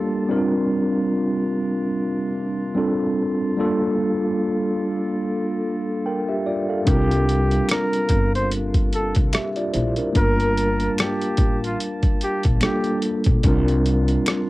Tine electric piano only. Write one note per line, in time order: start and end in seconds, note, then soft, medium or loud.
0.00 0.23 G3 medium
0.00 0.23 A#3 medium
0.00 0.24 D4 medium
0.00 0.24 F4 medium
0.00 0.32 G4 medium
0.00 0.28 A4 medium
0.28 1.79 G3 loud
0.28 1.80 C4 loud
0.28 1.80 D4 medium
0.28 0.37 E4 medium
0.28 1.81 A#4 loud
0.37 1.84 F4 medium
2.75 3.52 G3 medium
2.75 3.52 C4 medium
2.75 3.53 D4 medium
2.75 3.53 F4 medium
2.75 3.53 A4 loud
3.57 5.08 G3 loud
3.57 5.09 A#3 medium
3.57 5.09 D4 medium
3.57 5.10 F4 medium
3.57 5.10 A4 loud
6.06 6.28 A#4 medium
6.06 6.28 G5 medium
6.29 6.45 G4 medium
6.29 6.45 E5 medium
6.46 6.69 F4 medium
6.46 6.68 D5 medium
6.69 7.09 A4 medium
6.69 7.08 F5 medium
6.85 8.37 G3 medium
6.85 8.37 C4 medium
6.85 8.37 D4 medium
6.85 6.95 E4 medium
6.85 8.38 A#4 medium
6.94 8.41 F4 medium
9.34 9.56 G4 medium
9.34 9.56 E5 medium
9.57 9.74 F4 medium
9.57 9.74 D5 medium
9.73 9.97 E4 medium
9.73 9.96 C5 medium
9.98 10.14 D4 soft
9.98 10.15 A#4 medium
10.13 11.65 G3 medium
10.13 11.66 A#3 medium
10.13 11.66 D4 medium
10.13 11.66 F4 medium
10.13 11.67 A#4 medium
12.61 13.38 G3 medium
12.61 13.38 A#3 medium
12.61 13.39 D4 medium
12.61 13.39 F4 medium
12.61 13.39 A4 medium
13.43 14.50 G3 medium
13.43 14.50 C4 medium
13.43 14.50 D4 medium
13.43 14.50 F4 medium
13.43 14.50 A#4 loud